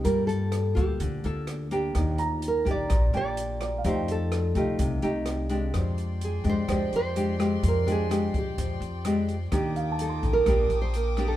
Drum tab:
HH |xxxxxxxx|xxxxxxxx|xxxxxxxx|xxxxxxxx|
SD |--r---r-|r---r--r|--r---r-|r---r--r|
BD |o--oo---|o--oo---|o--oo---|o--oo---|

HH |xxxxxxxx|xxxxxxxx|
SD |--r---r-|r---r--r|
BD |o--oo---|o--oo---|